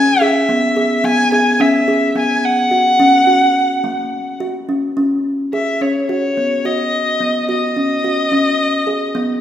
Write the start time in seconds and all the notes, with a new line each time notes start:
Already playing: C#4 G#5
0.21 G#4 E5
0.49 B3
0.77 G#4
1.04 B3 G#5
1.32 G#4 G#5
1.60 C#4 E5
1.88 G#4
2.15 B3 G#5
2.45 F#5
2.71 F#4
3.00 C#4
3.27 F#4
3.84 A#3
4.40 F#4
4.69 C#4
4.97 C#4
5.53 G#4 E5
5.81 C#4 C#5
6.09 F#4 C#5
6.37 B3
6.65 F#4 D#5
7.21 B3
7.49 F#4 D#5
7.76 C#4
8.04 F#4
8.32 C#4
8.87 G#4
9.15 B3